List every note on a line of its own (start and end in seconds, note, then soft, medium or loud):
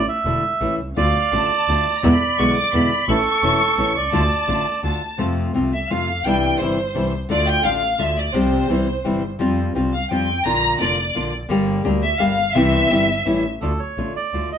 0.09 0.75 E5 medium
0.25 0.40 E1 medium
0.25 0.42 D3 medium
0.25 0.43 A3 medium
0.25 0.43 D4 medium
0.25 0.43 E4 medium
0.60 0.76 A1 soft
0.60 0.78 E3 medium
0.60 0.78 A3 medium
0.60 0.78 C#4 medium
0.60 0.78 E4 medium
0.79 0.96 C2 soft
0.96 1.12 D2 medium
0.96 1.06 D3 medium
0.96 1.06 A3 medium
0.96 1.06 D4 medium
0.96 1.06 F4 medium
0.96 2.02 D5 medium
0.96 1.30 F5 medium
1.32 1.48 A1 medium
1.32 1.49 D3 medium
1.32 1.50 A3 medium
1.32 1.50 D4 medium
1.32 1.50 F4 medium
1.32 1.97 A5 medium
1.68 1.83 D2 medium
1.68 1.85 D3 medium
1.68 1.86 A3 medium
1.68 1.86 D4 medium
1.68 1.86 F4 medium
1.97 2.04 A#5 medium
2.03 2.18 E2 medium
2.03 2.12 B2 medium
2.03 2.12 D3 medium
2.03 2.13 G#3 medium
2.03 2.13 B3 medium
2.03 2.13 E4 medium
2.03 3.04 D5 medium
2.03 2.39 B5 medium
2.38 2.54 B1 medium
2.38 2.55 B2 medium
2.38 2.55 D3 medium
2.38 2.56 G#3 medium
2.38 2.56 B3 medium
2.38 2.56 E4 medium
2.38 2.57 C#6 medium
2.56 2.72 D6 medium
2.73 2.88 E2 soft
2.73 2.90 B2 medium
2.73 2.90 D3 medium
2.73 2.90 G#3 medium
2.73 2.90 B3 medium
2.73 2.90 E4 medium
2.73 3.08 B5 medium
3.08 3.23 A1 medium
3.08 3.17 E3 medium
3.08 3.17 A3 medium
3.08 3.18 C#4 medium
3.08 3.18 E4 medium
3.08 3.92 A4 medium
3.08 4.13 C#6 loud
3.42 3.58 E1 medium
3.42 3.59 E3 medium
3.42 3.59 A3 medium
3.42 3.60 C#4 medium
3.42 3.60 E4 medium
3.77 3.92 A1 medium
3.77 3.94 E3 medium
3.77 3.95 A3 medium
3.77 3.95 C#4 medium
3.77 3.95 E4 medium
3.95 4.12 C2 soft
3.95 4.80 D5 medium
4.12 4.28 D2 medium
4.12 4.22 D3 medium
4.12 4.22 A3 medium
4.12 4.22 D4 medium
4.12 4.22 F4 medium
4.12 4.79 A5 medium
4.48 4.63 A1 soft
4.48 4.65 D3 medium
4.48 4.65 A3 medium
4.48 4.65 D4 medium
4.48 4.65 F4 medium
4.83 4.99 D2 soft
4.83 5.01 D3 medium
4.83 5.01 A3 medium
4.83 5.01 D4 medium
4.83 5.01 F4 medium
4.83 5.17 A5 medium
5.18 5.53 F2 medium
5.18 5.53 C3 medium
5.18 5.53 F3 medium
5.18 5.54 A3 medium
5.18 5.54 C4 medium
5.18 5.55 F4 medium
5.54 5.89 C2 soft
5.54 5.71 C3 medium
5.54 5.72 F3 medium
5.54 5.72 A3 medium
5.54 5.72 C4 medium
5.54 5.72 F4 medium
5.73 5.89 E5 medium
5.90 6.24 F2 soft
5.90 6.07 C3 medium
5.90 6.07 F3 medium
5.90 6.07 A3 medium
5.90 6.07 C4 medium
5.90 6.08 F4 medium
5.90 6.25 F5 medium
6.25 6.58 C2 medium
6.25 6.59 C3 medium
6.25 6.59 E3 medium
6.25 6.60 G3 medium
6.25 6.60 D4 medium
6.25 6.60 E4 medium
6.25 6.61 G5 medium
6.60 6.93 G1 soft
6.60 6.77 C3 medium
6.60 6.77 E3 medium
6.60 6.77 G3 medium
6.60 6.78 D4 medium
6.60 6.78 E4 medium
6.60 7.13 C5 medium
6.94 7.28 C2 soft
6.94 7.11 C3 medium
6.94 7.12 E3 medium
6.94 7.12 G3 medium
6.94 7.12 D4 medium
6.94 7.12 E4 medium
7.29 7.63 D2 medium
7.29 7.62 D3 medium
7.29 7.63 A3 medium
7.29 7.63 D4 medium
7.29 7.64 F4 medium
7.29 7.46 D5 medium
7.47 7.65 G5 loud
7.63 7.98 A1 soft
7.63 7.81 D3 medium
7.63 7.81 A3 medium
7.63 7.81 D4 medium
7.63 7.81 F4 medium
7.63 7.99 F5 medium
7.98 8.32 D2 soft
7.98 8.16 D3 medium
7.98 8.16 A3 medium
7.98 8.16 D4 medium
7.98 8.16 F4 medium
7.98 8.17 E5 medium
8.18 8.35 D5 medium
8.33 8.67 C2 medium
8.33 8.68 C3 medium
8.33 8.69 F3 medium
8.33 8.68 G3 medium
8.33 8.69 C4 medium
8.33 8.69 G4 medium
8.33 9.23 C5 medium
8.69 9.03 C2 soft
8.69 8.86 C3 medium
8.69 8.86 E3 medium
8.69 8.86 G3 medium
8.69 8.87 C4 medium
8.69 8.87 E4 medium
9.04 9.38 G1 soft
9.04 9.21 C3 medium
9.04 9.22 E3 medium
9.04 9.22 G3 medium
9.04 9.22 C4 medium
9.04 9.22 E4 medium
9.39 9.73 F2 medium
9.39 9.74 F3 medium
9.39 9.74 G3 medium
9.39 9.74 C4 medium
9.39 9.75 F4 medium
9.75 10.09 C2 soft
9.75 9.92 F3 medium
9.75 9.92 G3 medium
9.75 9.93 C4 medium
9.75 9.93 F4 medium
9.93 10.10 F5 medium
10.10 10.44 F2 soft
10.10 10.28 F3 medium
10.10 10.28 G3 medium
10.10 10.28 C4 medium
10.10 10.28 F4 medium
10.10 10.43 G5 medium
10.45 10.79 A#1 medium
10.45 10.79 D3 medium
10.45 10.79 A#3 medium
10.45 10.80 D4 medium
10.45 10.81 F4 medium
10.45 10.81 A#5 loud
10.80 11.14 F1 soft
10.80 10.97 D3 medium
10.80 10.97 A#3 medium
10.80 10.98 D4 medium
10.80 10.98 F4 medium
10.80 11.30 D5 medium
11.15 11.48 A#1 soft
11.15 11.32 D3 medium
11.15 11.32 A#3 medium
11.15 11.32 D4 medium
11.15 11.32 F4 medium
11.49 11.83 G1 medium
11.49 11.83 D3 medium
11.49 11.83 G3 medium
11.49 11.83 A#3 medium
11.49 11.84 D4 medium
11.49 11.84 G4 medium
11.84 12.18 D2 medium
11.84 12.01 D3 medium
11.84 12.01 G3 medium
11.84 12.01 A#3 medium
11.84 12.02 D4 medium
11.84 12.02 G4 medium
12.03 12.19 E5 medium
12.19 12.53 G1 medium
12.19 12.36 D3 medium
12.19 12.36 G3 medium
12.19 12.37 A#3 medium
12.19 12.37 D4 medium
12.19 12.37 G4 medium
12.19 12.55 F5 medium
12.54 12.88 C2 medium
12.54 12.88 C3 medium
12.54 12.89 E3 medium
12.54 12.89 G3 medium
12.54 12.90 C4 loud
12.54 12.90 E4 medium
12.54 13.44 E5 loud
12.90 13.24 G1 medium
12.90 13.07 C3 medium
12.90 13.07 E3 medium
12.90 13.07 G3 medium
12.90 13.08 C4 medium
12.90 13.08 E4 medium
13.25 13.60 A1 soft
13.25 13.43 E3 medium
13.25 13.43 G3 medium
13.25 13.43 C#4 medium
13.25 13.43 E4 medium
13.61 13.77 D2 medium
13.61 13.71 D3 medium
13.61 13.71 A3 medium
13.61 13.71 D4 medium
13.61 13.72 F4 medium
13.61 13.80 A4 medium
13.79 14.13 C#5 medium
13.97 14.13 A1 soft
13.97 14.15 D3 soft
13.97 14.15 A3 medium
13.97 14.16 D4 soft
13.97 14.16 F4 soft
14.16 14.50 D5 medium
14.33 14.49 D2 soft
14.33 14.51 D3 soft
14.33 14.51 A3 soft
14.33 14.52 D4 soft
14.33 14.52 F4 medium
14.52 14.58 D#5 medium